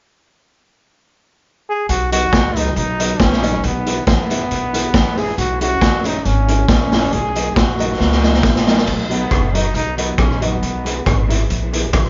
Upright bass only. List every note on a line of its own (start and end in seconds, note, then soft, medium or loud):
1.89 2.26 B1 loud
2.33 2.70 C#2 medium
2.76 3.13 B1 loud
3.20 3.57 A#1 loud
3.64 4.01 B1 loud
4.07 4.44 A#1 medium
4.51 4.88 B1 medium
4.94 5.31 A#1 medium
5.38 5.75 B1 loud
5.82 6.19 A#1 medium
6.25 6.62 G#1 loud
6.68 7.06 A#1 loud
7.13 7.50 B1 medium
7.56 7.93 A#1 medium
8.00 8.44 C#2 medium
8.44 8.81 A#1 loud
8.87 9.24 B1 loud
9.31 9.68 F#1 medium
9.74 10.12 B1 loud
10.18 10.56 A#1 loud
10.62 11.00 B1 loud
11.06 11.43 G#1 medium
11.50 11.87 A#1 loud
11.94 12.10 A#1 medium